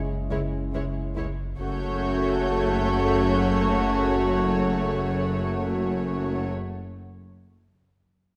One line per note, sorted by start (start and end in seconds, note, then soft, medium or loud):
0.00 1.55 F#1 medium
0.00 0.14 C#3 soft
0.00 1.23 C#3 soft
0.00 1.23 G#3 soft
0.00 1.24 C#4 soft
0.00 1.23 E4 soft
0.31 0.39 C#2 soft
0.31 0.57 C#3 soft
0.31 0.40 G#3 soft
0.31 0.39 E4 soft
0.31 0.39 C#5 soft
0.73 0.81 C#2 soft
0.73 1.00 C#3 soft
0.73 0.83 G#3 soft
0.73 0.83 E4 soft
0.73 0.83 C#5 soft
1.16 1.24 C#2 soft
1.16 1.25 C#2 soft
1.16 1.43 C#3 soft
1.16 1.26 G#3 soft
1.16 1.24 E4 soft
1.16 1.26 C#5 soft
1.59 6.46 F#1 medium
1.59 6.47 F#1 soft
1.59 6.46 F#2 soft
1.59 6.47 C#3 medium
1.59 6.48 A3 soft
1.59 6.48 C#4 soft
1.59 6.47 F#4 soft
1.59 6.49 F#4 soft
1.59 6.47 C#5 soft
1.59 5.42 C#6 soft
1.59 3.83 G6 soft
3.83 4.56 G#6 soft